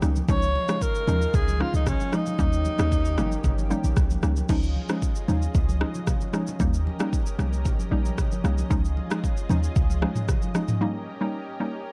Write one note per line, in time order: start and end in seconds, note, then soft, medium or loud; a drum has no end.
0.00 0.21 C#2 medium
0.00 0.27 D#3 medium
0.00 0.26 G3 medium
0.00 0.27 A#3 medium
0.00 0.26 C#4 medium
0.00 0.27 C#4 medium
0.00 0.27 D#4 medium
0.00 0.27 G4 medium
0.00 cross-stick medium
0.00 shaker medium
0.16 high conga medium
0.16 shaker soft
0.28 0.57 C#2 loud
0.28 2.37 C#3 medium
0.28 0.65 F3 medium
0.28 2.37 G#3 medium
0.28 0.65 G#3 medium
0.28 0.66 C#4 medium
0.28 2.37 D#4 medium
0.28 0.66 D#4 loud
0.28 2.37 F4 medium
0.28 0.84 C#5 loud
0.28 kick loud
0.28 low conga medium
0.28 shaker medium
0.42 shaker soft
0.55 high conga medium
0.68 0.88 F3 medium
0.68 0.88 G#3 medium
0.68 0.88 C#4 medium
0.68 0.88 D#4 medium
0.68 cross-stick loud
0.68 shaker medium
0.81 1.36 A#4 loud
0.81 kick medium
0.81 shaker medium
0.95 shaker medium
1.07 1.27 D#2 loud
1.07 1.27 F3 medium
1.07 1.28 G#3 medium
1.07 1.28 C#4 medium
1.07 1.28 D#4 medium
1.07 high conga medium
1.07 low conga medium
1.07 shaker soft
1.22 shaker soft
1.34 1.63 C#2 loud
1.34 1.63 G#4 loud
1.34 kick loud
1.34 low conga medium
1.34 shaker medium
1.48 high conga medium
1.48 shaker soft
1.60 1.80 F3 medium
1.60 1.80 G#3 medium
1.60 1.80 C#4 medium
1.60 1.80 D#4 medium
1.60 1.74 F4 medium
1.60 cross-stick medium
1.74 1.93 C#2 medium
1.74 1.89 D#4 medium
1.74 high conga medium
1.74 shaker medium
1.86 2.16 C#4 medium
1.86 kick medium
1.86 cross-stick medium
1.86 low conga medium
1.86 shaker medium
2.00 high conga medium
2.00 shaker soft
2.12 2.37 F3 medium
2.12 2.37 G#3 medium
2.12 2.37 C#4 medium
2.12 2.37 D#4 medium
2.12 3.98 D#4 medium
2.12 cross-stick medium
2.12 shaker medium
2.26 high conga medium
2.26 shaker soft
2.39 2.68 D#2 loud
2.39 4.48 D#3 medium
2.39 2.76 G3 medium
2.39 2.76 A#3 medium
2.39 4.47 A#3 medium
2.39 2.76 C#4 medium
2.39 4.47 C#4 medium
2.39 2.76 D#4 loud
2.39 4.47 G4 medium
2.39 kick loud
2.39 low conga medium
2.39 shaker medium
2.53 shaker medium
2.65 high conga medium
2.65 shaker medium
2.79 3.19 D#2 loud
2.79 2.98 G3 medium
2.79 2.98 A#3 medium
2.79 2.98 C#4 medium
2.79 2.99 D#4 medium
2.79 cross-stick loud
2.79 shaker medium
2.92 kick medium
2.92 shaker medium
3.05 shaker medium
3.18 3.37 G1 medium
3.18 3.38 G3 medium
3.18 3.38 A#3 medium
3.18 3.38 C#4 medium
3.18 3.38 D#4 medium
3.18 cross-stick medium
3.18 high conga medium
3.18 low conga medium
3.18 shaker soft
3.32 shaker soft
3.44 3.73 G1 medium
3.44 kick loud
3.44 low conga medium
3.44 shaker medium
3.58 high conga medium
3.58 shaker soft
3.70 3.90 G3 medium
3.70 3.91 A#3 medium
3.70 3.91 C#4 medium
3.70 3.91 D#4 medium
3.70 shaker medium
3.84 3.93 A#1 medium
3.84 high conga medium
3.84 shaker medium
3.97 4.16 C2 medium
3.97 kick medium
3.97 cross-stick medium
3.97 low conga medium
3.97 shaker medium
4.10 high conga medium
4.10 shaker soft
4.23 4.42 C#2 medium
4.23 4.47 G3 medium
4.23 4.47 A#3 medium
4.23 4.47 C#4 medium
4.23 4.48 D#4 medium
4.23 cross-stick medium
4.23 shaker medium
4.36 high conga medium
4.36 shaker soft
4.49 4.78 C#2 loud
4.49 4.86 F3 loud
4.49 4.86 G#3 medium
4.49 10.77 C#4 medium
4.49 4.86 C#4 medium
4.49 4.86 D#4 loud
4.49 6.58 F4 medium
4.49 6.58 G#4 medium
4.49 6.58 D#5 medium
4.49 kick loud
4.49 crash medium
4.49 low conga medium
4.49 shaker medium
4.63 shaker soft
4.76 high conga medium
4.89 5.09 F3 medium
4.89 5.09 G#3 medium
4.89 5.09 C#4 medium
4.89 5.09 D#4 medium
4.89 cross-stick loud
4.89 shaker medium
5.02 kick medium
5.02 shaker medium
5.16 shaker medium
5.28 5.47 D#2 loud
5.28 5.48 F3 medium
5.28 5.48 G#3 medium
5.28 5.48 C#4 medium
5.28 5.49 D#4 medium
5.28 high conga medium
5.28 low conga medium
5.28 shaker soft
5.42 shaker medium
5.55 5.84 C#2 loud
5.55 kick loud
5.55 low conga medium
5.55 shaker medium
5.69 high conga medium
5.69 shaker soft
5.81 6.01 F3 medium
5.81 6.01 G#3 medium
5.81 6.01 C#4 medium
5.81 6.01 D#4 medium
5.81 cross-stick loud
5.95 high conga medium
5.95 shaker medium
6.07 kick medium
6.07 cross-stick medium
6.07 low conga medium
6.07 shaker medium
6.21 high conga medium
6.21 shaker soft
6.33 6.58 F3 medium
6.33 6.58 G#3 medium
6.33 6.58 C#4 medium
6.33 6.58 D#4 medium
6.33 cross-stick medium
6.33 shaker medium
6.47 high conga medium
6.47 shaker soft
6.60 6.89 D#2 loud
6.60 6.97 G3 loud
6.60 6.97 A#3 medium
6.60 6.97 C#4 medium
6.60 6.97 D#4 loud
6.60 8.68 G4 medium
6.60 8.68 A#4 medium
6.60 11.92 D#5 medium
6.60 kick loud
6.60 low conga medium
6.60 shaker medium
6.74 shaker medium
6.87 high conga medium
7.00 7.19 G3 medium
7.00 7.19 A#3 medium
7.00 7.19 C#4 medium
7.00 7.20 D#4 medium
7.00 cross-stick loud
7.00 shaker medium
7.13 kick medium
7.13 shaker medium
7.26 shaker medium
7.39 7.68 C2 loud
7.39 7.59 G3 medium
7.39 7.59 A#3 medium
7.39 7.59 C#4 medium
7.39 7.59 D#4 medium
7.39 cross-stick medium
7.39 high conga medium
7.39 low conga medium
7.39 shaker soft
7.53 shaker soft
7.65 kick loud
7.65 low conga medium
7.65 shaker medium
7.79 high conga medium
7.79 shaker soft
7.91 8.11 A#1 loud
7.91 8.11 G3 medium
7.91 8.12 A#3 medium
7.91 8.12 C#4 medium
7.91 8.12 D#4 medium
8.05 high conga medium
8.05 shaker medium
8.18 kick medium
8.18 cross-stick medium
8.18 low conga medium
8.18 shaker medium
8.32 high conga medium
8.32 shaker soft
8.44 8.63 C2 loud
8.44 8.68 G3 medium
8.44 8.69 A#3 medium
8.44 8.69 C#4 medium
8.44 8.69 D#4 medium
8.44 cross-stick medium
8.44 shaker medium
8.58 high conga medium
8.58 shaker soft
8.70 9.00 C#2 loud
8.70 9.07 F3 medium
8.70 9.07 G#3 medium
8.70 9.07 C#4 medium
8.70 9.07 D#4 loud
8.70 10.79 F4 medium
8.70 10.79 G#4 medium
8.70 kick loud
8.70 low conga medium
8.70 shaker medium
8.85 shaker medium
8.97 high conga medium
9.10 9.30 F3 medium
9.10 9.30 G#3 medium
9.10 9.30 C#4 medium
9.10 9.30 D#4 medium
9.10 cross-stick loud
9.10 shaker medium
9.24 kick medium
9.24 shaker medium
9.37 shaker medium
9.49 9.69 D#2 loud
9.49 9.70 F3 medium
9.49 9.70 G#3 medium
9.49 9.70 C#4 medium
9.49 9.70 D#4 medium
9.49 high conga medium
9.49 low conga medium
9.49 shaker medium
9.64 shaker soft
9.76 10.05 C#2 loud
9.76 kick loud
9.76 low conga medium
9.76 shaker medium
9.90 high conga medium
9.90 shaker soft
10.02 10.22 F3 medium
10.02 10.22 G#3 medium
10.02 10.22 C#4 medium
10.02 10.22 D#4 medium
10.02 cross-stick loud
10.15 mid tom medium
10.15 high conga medium
10.15 shaker medium
10.29 kick medium
10.29 cross-stick medium
10.29 low conga medium
10.29 shaker medium
10.42 high conga medium
10.42 shaker soft
10.55 10.79 F3 medium
10.55 10.79 G#3 medium
10.55 10.79 C#4 medium
10.55 10.79 D#4 medium
10.55 cross-stick medium
10.55 shaker medium
10.68 mid tom loud
10.68 high conga medium
10.68 shaker soft
10.81 11.18 G3 loud
10.81 11.18 A#3 medium
10.81 11.18 C#4 medium
10.81 11.92 C#4 medium
10.81 11.18 D#4 loud
10.81 11.92 G4 medium
10.81 11.92 A#4 medium
11.21 11.40 G3 medium
11.21 11.41 A#3 medium
11.21 11.41 C#4 medium
11.21 11.41 D#4 medium
11.60 11.80 G3 medium
11.60 11.80 A#3 medium
11.60 11.80 C#4 medium
11.60 11.80 D#4 medium